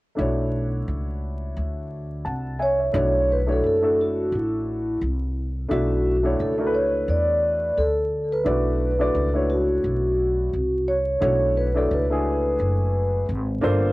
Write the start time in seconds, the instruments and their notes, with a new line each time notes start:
0.15 upright bass B1, grand piano A3 D4 E4
0.19 grand piano F#4 C#5
0.88 upright bass C#2
1.57 upright bass D2
2.25 upright bass C2, grand piano F#5 A5
2.59 vibraphone C#5, grand piano E5 G#5
2.79 grand piano C#5 E5
2.92 upright bass B1, grand piano A3 D4 E4 F#4 C#5
3.32 vibraphone B4
3.46 grand piano A3 D4 E4 F#4 C#5
3.52 vibraphone A4
3.64 upright bass F#1, vibraphone A4
3.81 grand piano A3 D4 E4 F#4 A4
4.01 vibraphone F#4
4.32 upright bass A1, vibraphone E4
5.01 upright bass C2
5.68 upright bass B1, grand piano A3 D4 E4 F#4 E5, vibraphone F#4
6.23 grand piano A3 D4 E4 F#4 C#5
6.40 upright bass C#2, vibraphone A4
6.58 grand piano A3 D4 E4 F#4 A#4
6.67 grand piano B4
6.74 vibraphone C#5
7.08 upright bass E2, vibraphone D5
7.77 upright bass D2, vibraphone A4
8.32 vibraphone B4
8.44 upright bass B1, grand piano A3 D4 E4 F#4 D5
8.98 grand piano A3 D4 E4 F#4 D5
9.15 upright bass C#2
9.33 grand piano A3 D4 E4 F#4 C#5
9.50 vibraphone F#4
9.84 upright bass B1
10.53 upright bass C2
10.88 vibraphone C#5
11.20 upright bass B1, grand piano A3 D4 E4 F#4 C#5
11.57 vibraphone B4
11.74 grand piano A3 D4 E4 F#4 D5, vibraphone A4
11.91 upright bass C#2, vibraphone B4
12.10 grand piano A3 D4 E4 F#4 G#4
12.60 upright bass F#1
13.29 upright bass G#1
13.61 upright bass G1, grand piano A#3 D4 F4 A4 C5